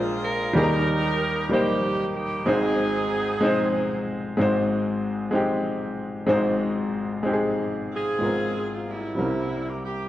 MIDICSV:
0, 0, Header, 1, 3, 480
1, 0, Start_track
1, 0, Key_signature, -4, "major"
1, 0, Tempo, 638298
1, 422, Time_signature, 6, 3, 24, 8
1, 7585, End_track
2, 0, Start_track
2, 0, Title_t, "Saxophone section"
2, 0, Program_c, 0, 65
2, 0, Note_on_c, 0, 65, 68
2, 0, Note_on_c, 0, 68, 66
2, 178, Note_on_c, 0, 70, 92
2, 387, Note_off_c, 0, 65, 0
2, 391, Note_off_c, 0, 68, 0
2, 403, Note_off_c, 0, 70, 0
2, 420, Note_on_c, 0, 67, 72
2, 421, Note_on_c, 0, 63, 75
2, 423, Note_on_c, 0, 70, 98
2, 1109, Note_off_c, 0, 63, 0
2, 1109, Note_off_c, 0, 67, 0
2, 1110, Note_off_c, 0, 70, 0
2, 1144, Note_on_c, 0, 58, 57
2, 1145, Note_on_c, 0, 63, 62
2, 1147, Note_on_c, 0, 67, 82
2, 1606, Note_off_c, 0, 67, 0
2, 1615, Note_on_c, 0, 67, 77
2, 1830, Note_off_c, 0, 58, 0
2, 1831, Note_off_c, 0, 63, 0
2, 1839, Note_off_c, 0, 67, 0
2, 1844, Note_on_c, 0, 60, 62
2, 1849, Note_on_c, 0, 63, 64
2, 1851, Note_on_c, 0, 68, 88
2, 3019, Note_off_c, 0, 60, 0
2, 3021, Note_off_c, 0, 63, 0
2, 3053, Note_off_c, 0, 68, 0
2, 5950, Note_on_c, 0, 60, 60
2, 5955, Note_on_c, 0, 65, 58
2, 5976, Note_on_c, 0, 68, 80
2, 6528, Note_off_c, 0, 68, 0
2, 6558, Note_off_c, 0, 65, 0
2, 6568, Note_on_c, 0, 65, 52
2, 6635, Note_off_c, 0, 60, 0
2, 6673, Note_off_c, 0, 65, 0
2, 6679, Note_on_c, 0, 58, 43
2, 6682, Note_on_c, 0, 55, 43
2, 6697, Note_on_c, 0, 64, 57
2, 7280, Note_off_c, 0, 64, 0
2, 7282, Note_on_c, 0, 67, 62
2, 7361, Note_off_c, 0, 58, 0
2, 7362, Note_off_c, 0, 55, 0
2, 7392, Note_off_c, 0, 67, 0
2, 7406, Note_on_c, 0, 67, 61
2, 7585, Note_off_c, 0, 67, 0
2, 7585, End_track
3, 0, Start_track
3, 0, Title_t, "Grand piano"
3, 0, Program_c, 1, 0
3, 0, Control_c, 1, 64, 127
3, 0, Note_on_c, 1, 34, 60
3, 0, Note_on_c, 1, 46, 61
3, 0, Note_on_c, 1, 56, 61
3, 0, Note_on_c, 1, 62, 58
3, 0, Note_on_c, 1, 65, 59
3, 0, Note_on_c, 1, 70, 72
3, 379, Note_off_c, 1, 56, 0
3, 384, Note_off_c, 1, 62, 0
3, 386, Note_off_c, 1, 65, 0
3, 393, Note_off_c, 1, 70, 0
3, 396, Note_off_c, 1, 34, 0
3, 397, Note_off_c, 1, 46, 0
3, 401, Note_on_c, 1, 55, 75
3, 412, Note_on_c, 1, 58, 67
3, 413, Note_on_c, 1, 39, 59
3, 416, Note_on_c, 1, 51, 59
3, 418, Note_on_c, 1, 63, 69
3, 428, Note_on_c, 1, 68, 63
3, 431, Control_c, 1, 64, 0
3, 474, Note_off_c, 1, 68, 0
3, 475, Note_on_c, 1, 70, 84
3, 580, Control_c, 1, 64, 127
3, 1090, Note_off_c, 1, 55, 0
3, 1095, Note_off_c, 1, 58, 0
3, 1098, Note_off_c, 1, 63, 0
3, 1122, Note_on_c, 1, 55, 60
3, 1127, Note_off_c, 1, 70, 0
3, 1135, Note_on_c, 1, 58, 59
3, 1142, Note_on_c, 1, 63, 59
3, 1151, Note_on_c, 1, 72, 74
3, 1810, Note_off_c, 1, 55, 0
3, 1816, Note_off_c, 1, 58, 0
3, 1820, Note_off_c, 1, 63, 0
3, 1823, Note_off_c, 1, 39, 0
3, 1824, Note_off_c, 1, 72, 0
3, 1825, Note_off_c, 1, 51, 0
3, 1849, Note_on_c, 1, 56, 70
3, 1851, Note_on_c, 1, 60, 65
3, 1855, Note_on_c, 1, 32, 58
3, 1862, Note_on_c, 1, 44, 59
3, 1864, Note_on_c, 1, 63, 68
3, 1868, Control_c, 1, 64, 0
3, 1871, Note_on_c, 1, 72, 76
3, 1979, Control_c, 1, 64, 127
3, 2532, Note_off_c, 1, 56, 0
3, 2533, Note_off_c, 1, 60, 0
3, 2540, Note_off_c, 1, 63, 0
3, 2543, Note_off_c, 1, 72, 0
3, 2561, Note_on_c, 1, 56, 76
3, 2572, Note_on_c, 1, 60, 67
3, 2578, Note_on_c, 1, 63, 72
3, 2591, Note_on_c, 1, 72, 81
3, 3248, Note_off_c, 1, 56, 0
3, 3254, Note_off_c, 1, 60, 0
3, 3257, Note_off_c, 1, 63, 0
3, 3263, Note_off_c, 1, 72, 0
3, 3264, Note_off_c, 1, 32, 0
3, 3268, Note_off_c, 1, 44, 0
3, 3285, Note_on_c, 1, 56, 70
3, 3293, Note_on_c, 1, 60, 69
3, 3297, Note_on_c, 1, 44, 58
3, 3301, Note_on_c, 1, 32, 59
3, 3302, Note_on_c, 1, 63, 67
3, 3305, Control_c, 1, 64, 0
3, 3319, Note_on_c, 1, 72, 81
3, 3448, Control_c, 1, 64, 127
3, 3970, Note_off_c, 1, 56, 0
3, 3974, Note_off_c, 1, 60, 0
3, 3979, Note_off_c, 1, 63, 0
3, 3987, Note_off_c, 1, 72, 0
3, 3993, Note_on_c, 1, 56, 67
3, 4006, Note_on_c, 1, 60, 62
3, 4010, Note_on_c, 1, 63, 62
3, 4026, Note_on_c, 1, 67, 74
3, 4684, Note_off_c, 1, 56, 0
3, 4691, Note_off_c, 1, 60, 0
3, 4693, Note_off_c, 1, 63, 0
3, 4701, Note_off_c, 1, 67, 0
3, 4706, Note_off_c, 1, 44, 0
3, 4708, Note_off_c, 1, 32, 0
3, 4713, Note_on_c, 1, 56, 73
3, 4716, Note_on_c, 1, 60, 67
3, 4720, Note_on_c, 1, 32, 61
3, 4728, Note_on_c, 1, 44, 63
3, 4731, Note_on_c, 1, 63, 71
3, 4733, Note_on_c, 1, 72, 84
3, 5405, Note_off_c, 1, 56, 0
3, 5407, Note_off_c, 1, 60, 0
3, 5414, Note_off_c, 1, 63, 0
3, 5415, Note_off_c, 1, 72, 0
3, 5436, Note_on_c, 1, 56, 62
3, 5451, Note_on_c, 1, 60, 62
3, 5460, Note_on_c, 1, 63, 57
3, 5464, Note_on_c, 1, 67, 56
3, 5509, Note_off_c, 1, 67, 0
3, 5515, Note_on_c, 1, 68, 71
3, 6128, Note_off_c, 1, 56, 0
3, 6135, Note_off_c, 1, 60, 0
3, 6140, Note_off_c, 1, 32, 0
3, 6140, Note_off_c, 1, 63, 0
3, 6144, Note_off_c, 1, 44, 0
3, 6156, Note_on_c, 1, 56, 50
3, 6167, Note_off_c, 1, 68, 0
3, 6169, Note_on_c, 1, 32, 37
3, 6169, Note_on_c, 1, 59, 35
3, 6175, Note_on_c, 1, 44, 40
3, 6177, Note_on_c, 1, 65, 44
3, 6186, Note_on_c, 1, 70, 51
3, 6188, Control_c, 1, 64, 0
3, 6217, Note_on_c, 1, 60, 43
3, 6223, Note_off_c, 1, 59, 0
3, 6310, Control_c, 1, 64, 127
3, 6849, Note_off_c, 1, 56, 0
3, 6859, Note_off_c, 1, 65, 0
3, 6864, Note_off_c, 1, 70, 0
3, 6865, Note_off_c, 1, 32, 0
3, 6868, Note_off_c, 1, 44, 0
3, 6879, Note_off_c, 1, 60, 0
3, 6881, Note_on_c, 1, 55, 43
3, 6893, Note_on_c, 1, 60, 39
3, 6895, Note_on_c, 1, 48, 38
3, 6905, Note_on_c, 1, 36, 40
3, 6909, Control_c, 1, 64, 0
3, 6909, Note_on_c, 1, 61, 32
3, 6916, Note_on_c, 1, 70, 48
3, 6954, Note_off_c, 1, 61, 0
3, 6958, Note_on_c, 1, 64, 39
3, 7044, Control_c, 1, 64, 127
3, 7572, Note_off_c, 1, 55, 0
3, 7579, Note_off_c, 1, 60, 0
3, 7585, Note_off_c, 1, 36, 0
3, 7585, Note_off_c, 1, 48, 0
3, 7585, Note_off_c, 1, 64, 0
3, 7585, Note_off_c, 1, 70, 0
3, 7585, End_track
0, 0, End_of_file